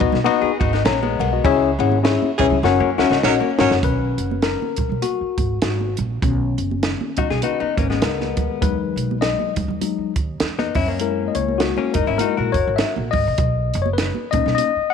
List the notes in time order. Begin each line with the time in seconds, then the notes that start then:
0.00 A#1 B3 D#4 F#4 B4 D#5, kick, ride, muted conga, low conga
0.12 B1, snare, low conga
0.24 B3 D#4 F#4 B4 D#5, ride, muted conga, high conga
0.42 G#4, muted upright bass stroke
0.60 G#1 D#4 F#4, kick, ride
0.73 B3 D#4, snare
0.85 A#1 A#3 C#4 C#5 A#5, snare, ride
1.03 G#3 B3, high conga
1.19 B1 A#4 F#5, ride, low conga
1.33 F#4 D#5
1.44 C#2 C#4 E4 G#4 C#5 E5, kick, ride, muted conga
1.79 G#1 C#4 E4 G#4 C#5 F#5, ride, high conga
1.92 high conga
2.03 C#4 E4 G#4 C#5 E5, snare, ride
2.22 high conga
2.38 B1 E3 C#4 E4 G#4 C#5 E5, kick, ride, low conga
2.50 C#2, low conga
2.63 F#1 C#4 F#4 A#4 C#5 F#5, snare, muted conga, high conga
2.80 F#2 A#3 C#4
2.98 D#2 F#3 C#4 E4 F#4 A#4 C#5 F#5, snare, muted conga
3.10 C#2 D#4 F#4, snare
3.23 A#1 F#3 C#4 D#4 F#4 A#4 C#5 F#5, snare, muted conga
3.40 A#3 C#4, high conga
3.58 G#1 F#3 C#4 F#4 A#4 C#5 F#5, snare, low conga
3.71 F#1, snare
3.83 B1 D#3 C#4 A#4 B4, kick, closed hi-hat, muted conga
4.18 F#1, closed hi-hat
4.31 high conga
4.42 A#4, snare, closed hi-hat
4.62 high conga
4.76 A#1, kick, closed hi-hat, low conga
4.89 B1, low conga
5.02 F#4, closed hi-hat, muted conga, high conga
5.21 muted upright bass stroke
5.38 G#1, kick, closed hi-hat, muted conga
5.62 G#1 F#4, snare, closed hi-hat
5.80 high conga
5.97 A#1, closed hi-hat, muted conga, low conga
6.22 B1 D#3 B3 C#4, kick, closed hi-hat, muted conga
6.58 F#1, closed hi-hat
6.71 high conga
6.83 snare, closed hi-hat
7.01 high conga
7.17 A#1 D#4 F#4, kick, closed hi-hat, muted conga, low conga
7.30 B1 G#4, snare, low conga
7.42 D#4 F#4 B4, closed hi-hat, high conga
7.60 B3 D#4, muted upright bass stroke
7.77 G#1 D#3 A#3 C#4, kick, closed hi-hat, muted conga
7.90 G#3 B3, snare
8.02 C#2 A#4, snare, closed hi-hat
8.21 snare, high conga
8.37 D#2, kick, closed hi-hat, muted conga, low conga
8.61 E2 F#3 G#3 D#4 B4, kick, closed hi-hat
8.96 B1, closed hi-hat
9.11 high conga
9.21 D#5, snare, closed hi-hat
9.39 high conga
9.56 D#2, kick, closed hi-hat, low conga
9.68 E2, low conga
9.81 F#3 G#3 D#4, closed hi-hat, muted conga, high conga
9.98 muted upright bass stroke
10.16 D#2, kick, closed hi-hat, muted conga
10.40 E2, snare, closed hi-hat
10.58 B3 D#4, snare, high conga
10.75 F#2 C#4 E4, kick, open hi-hat, muted conga, low conga
10.88 A#3 C#4
11.00 G#3 A#3 E4 A#4, closed hi-hat, muted conga
11.28 D#5
11.35 C#2 C#5, closed hi-hat, muted conga
11.48 high conga
11.58 F#4, snare, closed hi-hat, muted conga
11.77 A#3 C#4, high conga
11.94 F#1 D#4 A#4, kick, closed hi-hat, muted conga, low conga
12.07 G#1 C#4 E4, low conga
12.18 G#3 A#3 D#4 E4 F#4 A#4, closed hi-hat, high conga
12.37 A#1 F#4 A#4
12.52 F#1 C#5, kick, closed hi-hat, muted conga
12.67 G#1
12.76 E5, snare, closed hi-hat, muted conga
12.96 A#1, high conga
13.11 G#1 D#5, kick, open hi-hat, muted conga, low conga
13.27 A#1
13.38 B1, kick, closed hi-hat, muted conga
13.74 F#1, closed hi-hat, muted conga
13.82 C#5, high conga
13.93 B4
13.98 snare, closed hi-hat
14.15 high conga
14.31 A#1 A#3 C#4 D#4 D#5, kick, closed hi-hat, muted conga, low conga
14.46 B1, snare, low conga
14.55 D#5, closed hi-hat, high conga
14.76 muted upright bass stroke
14.90 F#5